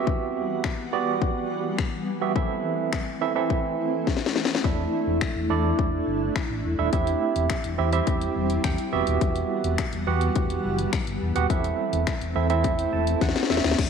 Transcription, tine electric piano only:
Already playing: B3 F#4 G4 E5
0.93 B3 F#4 G4 D5
2.21 B3 F#4 G4 E5
2.36 E3 C4 E4 A4 E5
3.21 E3 C4 E4 A4 E5
3.35 E3 C4 E4 A4 E5
4.64 D4 E4 A4 E5
5.50 D4 E4 A4 D5
6.78 D4 E4 A4 E5
6.93 C4 E4 G4 E5
7.78 C4 E4 G4 E5
7.93 C4 E4 G4 E5
8.64 G5
8.92 B3 F#4 G4 E5
10.07 B3 F#4 G4 F#5
11.35 B3 F#4 G4 F#5
11.50 C4 E4 A4 E5
12.35 C4 E4 A4 E5
12.50 C4 E4 A4 E5
12.93 A5
13.22 F#5
13.50 E5
13.78 D4 E4 A4

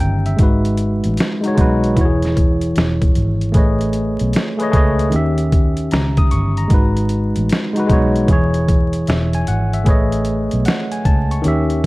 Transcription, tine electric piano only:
Already playing: D#3 C#4 G4 E5 A#5
0.00 G5
0.26 E5
0.36 G#3 D#4
0.41 F#4 B4
1.41 G#3 D#4
1.46 F#4 C#5
1.55 G#3 D#4
1.59 F#4 B4
1.95 E3 E4
1.99 F#4 C#5
2.05 G#4
3.52 A3 G#4 B4
3.57 C#5 D#5
4.57 A3 G#4 B4
4.62 C#5 D#5
4.70 A3 G#4 B4
4.75 C#5 D#5
5.10 D#3 C#4
5.14 G4 E5
5.92 A#5
6.18 D#6
6.31 C#6
6.58 A#5
6.68 G#3 D#4 F#4
6.74 B4
7.73 G#3 D#4
7.77 F#4 B4
7.87 G#3 D#4
7.91 F#4 C#5
8.26 E3 E4
8.31 G#4 C#5
9.08 E5
9.35 G#5
9.48 F#5
9.74 E5
9.84 A3 G#4 B4
9.89 C#5 D#5
10.66 F#5
10.92 G#5
11.05 A5
11.31 C#6
11.41 D#3 C#4
11.46 G4 E5

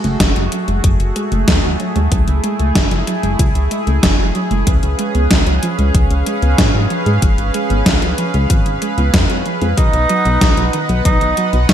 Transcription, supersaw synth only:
Already playing: A3 F#4 G#4
2.12 E4
4.67 C#4 B4 F5
9.78 B3 D#5 F#5

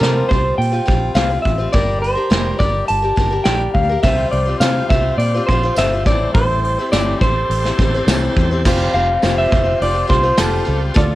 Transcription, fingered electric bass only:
0.01 C3
0.30 C2
0.58 A#2
0.88 A#1
1.15 C2
1.45 A1
1.73 G1
2.30 F1
2.60 G1
2.90 G1
3.17 G1
3.46 A#1
3.75 D2
4.03 C2
4.32 C2
4.60 C3
4.90 C2
5.17 A#2
5.49 A#1
5.77 G1
6.05 A1
6.34 A1
6.92 G1
7.21 A1
7.50 A1
7.79 A1
8.07 C2
8.37 E2
8.65 F1
8.94 F1
9.23 F1
9.52 F1
9.81 F1
10.10 C2
10.39 F1
10.68 C#2
10.96 D2

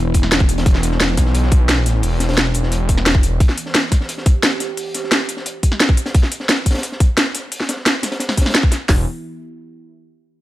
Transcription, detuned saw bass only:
Already playing: E1
0.32 E1
0.66 E1
1.00 E1
1.17 B1
1.77 A#1
2.03 E1
2.37 E1
2.55 E1
8.89 E1

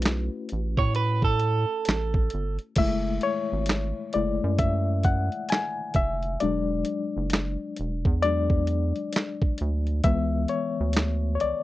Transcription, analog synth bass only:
Already playing: B1
0.52 A1
0.79 A2
1.88 A1
2.34 G1
2.78 F#1
3.53 G#1
4.16 F#1
4.44 F#2
5.96 F1
6.43 E1
7.17 F#1
7.80 E1
8.06 E2
9.61 D2
10.05 C#2
10.80 D2
11.43 C#2

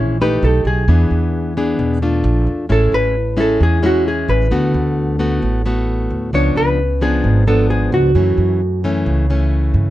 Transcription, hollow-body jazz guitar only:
Already playing: C#5
0.22 B4
0.44 A4
0.67 G#4
2.72 A4
2.94 B4
3.40 A4
3.63 G#4
3.86 F#4
4.08 G#4
4.29 B4
6.35 C#5
6.57 B4
7.02 G#4
7.48 A4
7.70 G#4
7.94 F#4

